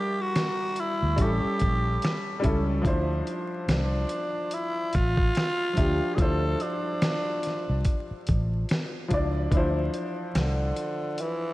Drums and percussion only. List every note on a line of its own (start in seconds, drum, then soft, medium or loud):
0.36 snare loud
0.36 closed hi-hat medium
0.76 closed hi-hat medium
1.18 kick medium
1.18 closed hi-hat medium
1.60 kick medium
1.60 closed hi-hat medium
2.02 snare loud
2.02 closed hi-hat medium
2.44 kick medium
2.44 closed hi-hat medium
2.85 kick loud
2.85 closed hi-hat medium
3.27 closed hi-hat medium
3.69 snare loud
3.69 closed hi-hat medium
4.09 closed hi-hat medium
4.51 closed hi-hat medium
4.93 kick medium
4.93 closed hi-hat medium
5.17 kick medium
5.35 snare loud
5.35 closed hi-hat medium
5.77 kick medium
5.77 closed hi-hat medium
6.18 kick loud
6.18 closed hi-hat medium
6.60 closed hi-hat medium
7.02 snare loud
7.02 closed hi-hat medium
7.43 snare soft
7.43 closed hi-hat medium
7.85 kick medium
7.85 closed hi-hat medium
8.27 kick medium
8.27 closed hi-hat medium
8.69 snare loud
8.69 closed hi-hat medium
9.11 kick medium
9.11 closed hi-hat medium
9.52 kick loud
9.52 closed hi-hat medium
9.94 closed hi-hat medium
10.35 snare loud
10.35 closed hi-hat medium
10.77 closed hi-hat medium
11.18 closed hi-hat medium